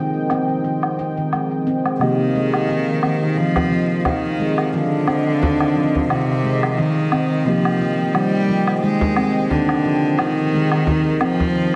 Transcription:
Already playing: synth keys C3 F3 A#3 D#4 G4, handpan D#3, analog synth pad F3 C4 D#5 G5
0.30 handpan C4, low woodblock, shaker
0.49 open hi-hat, shaker
0.64 handpan D#3, open hi-hat, shaker
0.83 low woodblock
0.99 handpan D#4, shaker
1.17 handpan D#3, shaker
1.33 handpan G#3, open hi-hat, low woodblock, shaker
1.51 open hi-hat
1.67 handpan C4, shaker
1.86 handpan G#3, low woodblock, shaker
1.99 synth keys C3 F3 A#3 D#5, cello D#3, handpan D#3, analog synth pad D#5 F5, open hi-hat, low woodblock, shaker
2.03 synth keys G4
2.20 open hi-hat
2.35 handpan G#3, shaker
2.54 open hi-hat, low woodblock, shaker
2.69 handpan D#3, open hi-hat, shaker
3.03 handpan C4, low woodblock, shaker
3.22 open hi-hat, shaker
3.37 handpan D#3, cello F3, open hi-hat, shaker
3.56 frame drum, low woodblock
3.72 handpan F3
3.91 shaker
4.00 cello F3
4.05 cello D#3, handpan D#3, open hi-hat, frame drum, low woodblock, shaker
4.24 open hi-hat
4.39 handpan G#3, shaker
4.58 low woodblock, shaker
4.73 cello D3, handpan F3, open hi-hat, shaker
4.92 open hi-hat
5.07 handpan C4, low woodblock, shaker
5.26 open hi-hat, shaker
5.42 handpan D#3, open hi-hat, frame drum
5.60 low woodblock
5.76 handpan F3, shaker
5.95 open hi-hat, frame drum, shaker
6.09 cello C3, handpan D#3, open hi-hat, low woodblock, shaker
6.44 handpan G#3, shaker
6.63 low woodblock, shaker
6.77 cello D#3, handpan D#3, open hi-hat, shaker
6.97 open hi-hat
7.12 handpan C4, low woodblock, shaker
7.31 shaker
7.45 synth keys C3 F3 A#3 G4 D#5, handpan D#3, cello F3, analog synth pad G5, open hi-hat, shaker
7.65 open hi-hat, low woodblock
7.81 handpan F3, shaker
7.99 open hi-hat, shaker
8.13 handpan D#3, cello G3, open hi-hat, low woodblock, shaker
8.49 handpan F3
8.67 open hi-hat, low woodblock, shaker
8.81 handpan D#3, cello G#3, open hi-hat, shaker
9.01 frame drum
9.16 handpan C4, low woodblock, shaker
9.50 cello D3, handpan D#3, open hi-hat, frame drum
9.69 open hi-hat, low woodblock
9.85 handpan F3, shaker
10.04 shaker
10.18 cello D#3, handpan D#3, open hi-hat, low woodblock, shaker
10.38 open hi-hat
10.53 handpan G#3, shaker
10.72 open hi-hat, low woodblock, shaker
10.87 handpan D#3, open hi-hat, frame drum, shaker
11.06 open hi-hat
11.21 cello F3, handpan C4, low woodblock, shaker
11.40 open hi-hat, frame drum, shaker
11.55 handpan D#3, open hi-hat, shaker

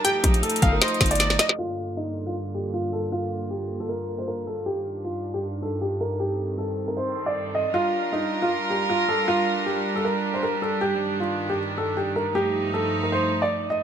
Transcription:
0.04 string section F3 A3 D#4, grand piano G4, synth pluck G5, closed hi-hat
0.24 808-style bass A#1, kick, closed hi-hat, open hi-hat
0.34 closed hi-hat
0.43 grand piano A4, closed hi-hat
0.50 closed hi-hat
0.56 closed hi-hat
0.62 808-style bass G1, synth pluck F5, kick, closed hi-hat
0.73 grand piano A#4
0.81 grand piano C5, synth pluck D#5, snare, closed hi-hat
0.88 closed hi-hat
0.94 closed hi-hat
1.01 808-style bass G1, kick, snare, closed hi-hat
1.06 closed hi-hat
1.11 grand piano D5, closed hi-hat
1.15 closed hi-hat
1.20 synth pluck D5, snare, closed hi-hat
1.30 snare
1.39 synth pluck D#5, grand piano D#5, snare, closed hi-hat
1.49 snare
1.58 string section G2 D3 A#3 F4, grand piano F4
1.97 grand piano D#4
2.26 grand piano F4
2.55 grand piano G4
2.74 grand piano F4
2.93 grand piano A4
3.12 grand piano F4
3.51 grand piano G4
3.80 grand piano A4
3.89 grand piano A#4
4.19 grand piano C5
4.28 grand piano A#4
4.47 grand piano A4
4.66 string section G2 D#3 D4, grand piano G4
5.05 grand piano F4
5.34 grand piano G4
5.62 grand piano A4
5.81 grand piano G4
6.01 grand piano A#4
6.20 string section C4 A4, grand piano G4
6.58 grand piano A4
6.88 grand piano A#4
6.97 grand piano C5
7.26 grand piano D5
7.55 grand piano D#5
7.74 string section G3 D4 F4 A#4, grand piano F4
8.13 grand piano D#4
8.42 grand piano F4
8.70 grand piano G4
8.89 grand piano F4
9.08 grand piano A4
9.28 grand piano F4
9.66 grand piano G4
9.96 grand piano A4
10.05 grand piano A#4
10.34 grand piano C5
10.43 grand piano A#4
10.62 grand piano A4
10.81 string section G2 D#3, grand piano G4
11.20 grand piano F4
11.49 grand piano G4
11.78 grand piano A4
11.97 grand piano G4
12.16 grand piano A#4
12.35 string section F3 A3 D#4, grand piano G4
12.73 grand piano A4
13.03 grand piano A#4
13.12 grand piano C5
13.42 grand piano D5
13.70 grand piano D#5

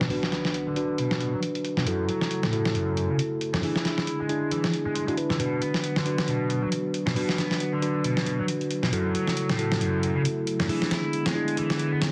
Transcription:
Already playing: ambient pad D3 F#3 B3, impact
0.01 distorted electric guitar B2, snare
0.10 distorted electric guitar B2, tine electric piano D4 F#4 B4, open hi-hat
0.23 snare
0.32 distorted electric guitar B3, snare, closed hi-hat
0.45 snare
0.54 closed hi-hat
0.67 distorted electric guitar D3
0.76 tine electric piano D4 F#4 B4, closed hi-hat
0.98 distorted electric guitar B2, closed hi-hat
1.11 snare
1.21 closed hi-hat
1.33 distorted electric guitar F#3
1.43 closed hi-hat
1.55 closed hi-hat
1.65 closed hi-hat
1.77 distorted electric guitar B2, snare
1.86 distorted electric guitar F#2, ambient pad C#3 A3 E4, tine electric piano E4 F#4 A4, closed hi-hat
2.09 distorted electric guitar F#3, closed hi-hat
2.21 snare
2.31 closed hi-hat
2.43 distorted electric guitar A2, snare
2.53 tine electric piano E4 F#4 A4, closed hi-hat
2.65 snare
2.75 distorted electric guitar F#2, closed hi-hat
2.97 closed hi-hat
3.10 distorted electric guitar C#3
3.19 closed hi-hat
3.41 closed hi-hat
3.54 distorted electric guitar F#2, snare
3.63 ambient pad D3 G#3 B3 E4, distorted electric guitar E3, tine electric piano D4 E4 G#4, open hi-hat
3.76 snare
3.85 distorted electric guitar E4, snare, closed hi-hat
3.98 snare
4.07 closed hi-hat
4.20 distorted electric guitar G#3
4.29 tine electric piano D4 E4 G#4, closed hi-hat
4.51 distorted electric guitar E3, closed hi-hat
4.64 snare
4.74 closed hi-hat
4.86 distorted electric guitar G#3
4.95 distorted electric guitar G#3, closed hi-hat
5.08 distorted electric guitar G#3, tine electric piano D4 E4 F#4, closed hi-hat
5.17 tine electric piano D4 E4 B4, closed hi-hat
5.30 distorted electric guitar D3, snare
5.39 distorted electric guitar B2, ambient pad F#3 F#4, tine electric piano D4 F#4 B4, closed hi-hat
5.62 distorted electric guitar B3, closed hi-hat
5.74 snare
5.84 closed hi-hat
5.96 distorted electric guitar D3, snare
6.06 tine electric piano D4 F#4 B4, closed hi-hat
6.18 snare
6.28 distorted electric guitar B2, closed hi-hat
6.50 closed hi-hat
6.62 distorted electric guitar F#3
6.72 closed hi-hat
6.94 closed hi-hat
7.07 distorted electric guitar B2, snare
7.16 distorted electric guitar B2, tine electric piano D4 F#4 B4, open hi-hat
7.29 snare
7.38 distorted electric guitar B3, snare, closed hi-hat
7.51 snare
7.60 closed hi-hat
7.73 distorted electric guitar D3
7.82 tine electric piano D4 F#4 B4, closed hi-hat
8.04 distorted electric guitar B2, closed hi-hat
8.17 snare
8.26 closed hi-hat
8.39 distorted electric guitar F#3
8.48 closed hi-hat
8.61 closed hi-hat
8.71 closed hi-hat
8.83 distorted electric guitar B2, snare
8.93 distorted electric guitar F#2, ambient pad C#3 A3 E4, tine electric piano E4 F#4 A4, closed hi-hat
9.15 distorted electric guitar F#3, closed hi-hat
9.27 snare
9.37 closed hi-hat
9.49 distorted electric guitar A2, snare
9.59 tine electric piano E4 F#4 A4, closed hi-hat
9.72 snare
9.81 distorted electric guitar F#2, closed hi-hat
10.03 closed hi-hat
10.16 distorted electric guitar C#3
10.25 closed hi-hat
10.47 closed hi-hat
10.60 distorted electric guitar F#2, snare
10.69 ambient pad D3 G#3 B3, distorted electric guitar E3, tine electric piano D4 E4 G#4, open hi-hat
10.82 snare
10.91 distorted electric guitar E4, snare, closed hi-hat
11.13 closed hi-hat
11.26 distorted electric guitar G#3, snare, closed hi-hat
11.35 tine electric piano D4 E4 G#4
11.48 closed hi-hat
11.57 distorted electric guitar E3, closed hi-hat
11.70 snare
11.79 closed hi-hat
11.92 distorted electric guitar B3
12.02 snare, closed hi-hat

